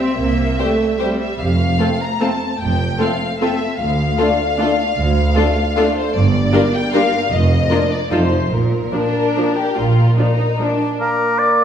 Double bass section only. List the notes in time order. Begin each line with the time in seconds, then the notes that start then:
0.18 C2
1.39 F1
2.60 F1
3.80 D2
4.99 D2
6.15 G1
7.31 F1
8.12 F1
8.51 A#1
9.77 A#1